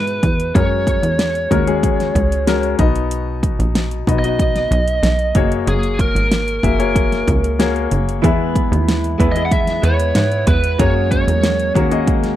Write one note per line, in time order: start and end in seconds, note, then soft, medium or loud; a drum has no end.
0.00 0.21 G#2 medium
0.00 0.55 G#3 medium
0.00 0.57 B3 medium
0.00 0.57 E4 medium
0.00 0.56 A#4 medium
0.00 0.30 B4 medium
0.00 0.60 B4 medium
0.07 closed hi-hat soft
0.23 0.53 E2 medium
0.23 kick medium
0.23 closed hi-hat medium
0.40 closed hi-hat soft
0.55 1.00 F#2 loud
0.55 1.44 G#3 medium
0.55 1.44 C#4 medium
0.55 1.44 F#4 medium
0.55 1.44 A#4 medium
0.55 2.75 C#5 medium
0.55 kick loud
0.55 closed hi-hat medium
0.87 kick medium
0.87 closed hi-hat medium
1.03 1.48 E2 medium
1.03 closed hi-hat soft
1.19 snare medium
1.19 closed hi-hat medium
1.35 closed hi-hat soft
1.51 2.11 D#2 medium
1.51 1.65 G#3 medium
1.51 1.66 C#4 medium
1.51 1.66 F#4 medium
1.51 1.66 A#4 medium
1.51 kick medium
1.51 closed hi-hat medium
1.67 2.41 G#3 medium
1.67 2.41 C#4 medium
1.67 2.42 F#4 medium
1.67 2.42 G#4 medium
1.67 closed hi-hat soft
1.83 kick medium
1.83 closed hi-hat medium
2.00 snare soft
2.00 closed hi-hat soft
2.15 2.75 C#2 medium
2.15 kick medium
2.15 closed hi-hat medium
2.32 closed hi-hat soft
2.47 2.79 G#3 medium
2.47 2.79 C#4 medium
2.47 2.78 F#4 medium
2.47 2.80 A#4 medium
2.47 snare medium
2.47 closed hi-hat medium
2.63 closed hi-hat soft
2.79 3.55 B1 medium
2.79 3.71 B2 medium
2.79 3.98 B3 medium
2.79 3.98 D#4 medium
2.79 3.98 F#4 medium
2.79 3.98 D#5 medium
2.79 kick loud
2.79 closed hi-hat medium
2.96 closed hi-hat soft
3.11 closed hi-hat medium
3.43 kick medium
3.43 closed hi-hat medium
3.59 4.04 A#1 medium
3.59 closed hi-hat soft
3.75 snare medium
3.75 closed hi-hat medium
3.91 closed hi-hat soft
4.07 4.67 B1 medium
4.07 4.22 B3 medium
4.07 4.22 D#4 medium
4.07 4.22 F#4 medium
4.07 4.23 D#5 medium
4.07 kick medium
4.07 closed hi-hat medium
4.19 5.72 D#5 medium
4.24 5.36 B3 medium
4.24 5.36 D#4 medium
4.24 5.34 F#4 medium
4.24 5.36 D#5 medium
4.24 closed hi-hat soft
4.39 kick medium
4.39 closed hi-hat medium
4.55 snare soft
4.55 closed hi-hat soft
4.71 5.01 B1 loud
4.71 closed hi-hat medium
4.88 closed hi-hat soft
5.03 5.33 B1 medium
5.03 snare medium
5.03 closed hi-hat medium
5.19 closed hi-hat soft
5.35 5.65 F#1 loud
5.35 6.54 A#3 medium
5.35 6.54 F#4 medium
5.35 6.55 G#4 medium
5.35 6.55 C#5 medium
5.35 kick medium
5.35 closed hi-hat medium
5.52 closed hi-hat soft
5.67 6.12 F#1 loud
5.67 6.00 G#4 medium
5.67 closed hi-hat medium
5.83 closed hi-hat soft
5.99 7.88 A#4 medium
5.99 kick medium
5.99 closed hi-hat medium
6.15 6.60 G#1 medium
6.15 closed hi-hat soft
6.32 snare medium
6.32 closed hi-hat medium
6.48 closed hi-hat soft
6.63 7.23 F#1 medium
6.63 6.78 A#3 medium
6.63 6.78 F#4 medium
6.63 6.78 G#4 medium
6.63 6.79 E5 medium
6.63 kick medium
6.63 closed hi-hat medium
6.79 7.54 A#3 medium
6.79 7.54 F#4 medium
6.79 7.54 G#4 medium
6.79 7.54 C#5 medium
6.79 closed hi-hat soft
6.96 kick medium
6.96 closed hi-hat medium
7.12 snare soft
7.12 closed hi-hat soft
7.28 7.88 C#2 medium
7.28 kick medium
7.28 closed hi-hat medium
7.44 closed hi-hat soft
7.59 8.19 A#3 medium
7.59 8.19 F#4 medium
7.59 8.19 G#4 medium
7.59 8.19 C#5 medium
7.59 snare medium
7.59 closed hi-hat medium
7.76 closed hi-hat soft
7.91 8.21 F#1 medium
7.91 closed hi-hat medium
8.09 closed hi-hat soft
8.22 8.68 E2 loud
8.22 9.19 E3 medium
8.22 9.18 G#3 medium
8.22 9.16 G#3 medium
8.22 9.18 B3 medium
8.22 9.13 B3 medium
8.22 9.19 E4 medium
8.22 9.13 E4 medium
8.22 9.13 G#4 medium
8.22 9.19 B4 medium
8.22 9.13 E5 medium
8.22 kick loud
8.22 closed hi-hat medium
8.56 kick medium
8.56 closed hi-hat medium
8.72 9.16 D#2 medium
8.72 closed hi-hat soft
8.88 snare medium
8.88 closed hi-hat medium
9.04 closed hi-hat soft
9.18 9.80 E2 medium
9.18 9.82 G#3 medium
9.18 9.82 B3 medium
9.18 9.34 B3 medium
9.18 9.34 E4 medium
9.18 9.83 E4 medium
9.18 9.35 G#4 medium
9.18 9.84 B4 medium
9.18 9.35 E5 medium
9.18 kick medium
9.18 closed hi-hat medium
9.32 10.54 B3 medium
9.32 9.44 D#5 medium
9.32 closed hi-hat soft
9.36 10.55 E4 medium
9.36 10.55 G#4 medium
9.36 10.55 E5 medium
9.45 9.52 F#5 medium
9.51 9.84 E5 loud
9.51 kick medium
9.51 closed hi-hat medium
9.67 snare soft
9.67 closed hi-hat soft
9.82 10.13 E2 loud
9.82 10.13 G#3 medium
9.82 10.14 B3 medium
9.82 10.15 E4 medium
9.82 10.16 B4 medium
9.82 10.44 C#5 medium
9.82 closed hi-hat medium
10.00 closed hi-hat soft
10.14 10.45 G#2 medium
10.14 10.45 G#3 medium
10.14 10.46 B3 medium
10.14 10.47 E4 medium
10.14 10.48 B4 medium
10.14 snare medium
10.14 closed hi-hat medium
10.32 closed hi-hat soft
10.46 10.77 E2 medium
10.46 10.78 G#3 medium
10.46 10.79 B3 medium
10.46 10.79 E4 medium
10.46 10.77 B4 medium
10.46 10.80 B4 medium
10.46 kick medium
10.46 closed hi-hat medium
10.64 closed hi-hat soft
10.78 11.24 F#2 loud
10.78 11.77 F#3 medium
10.78 11.73 G#3 medium
10.78 11.69 A#3 medium
10.78 11.74 C#4 medium
10.78 11.69 F#4 medium
10.78 11.76 F#4 medium
10.78 11.69 G#4 medium
10.78 11.76 A#4 medium
10.78 11.11 C#5 medium
10.78 11.69 C#5 medium
10.78 kick loud
10.78 closed hi-hat medium
11.11 11.72 C#5 medium
11.11 kick medium
11.11 closed hi-hat medium
11.27 11.72 E2 medium
11.27 closed hi-hat soft
11.43 snare medium
11.43 closed hi-hat medium
11.59 closed hi-hat soft
11.74 12.36 D#2 medium
11.74 12.36 G#3 medium
11.74 11.90 A#3 medium
11.74 12.36 C#4 medium
11.74 11.90 F#4 medium
11.74 12.36 F#4 medium
11.74 11.90 G#4 medium
11.74 12.36 A#4 medium
11.74 11.90 C#5 medium
11.74 kick medium
11.74 closed hi-hat medium
11.91 12.36 A#3 medium
11.91 12.36 F#4 medium
11.91 12.36 G#4 medium
11.91 12.36 D#5 medium
11.91 closed hi-hat soft
12.07 kick medium
12.07 closed hi-hat medium
12.23 snare soft
12.23 closed hi-hat soft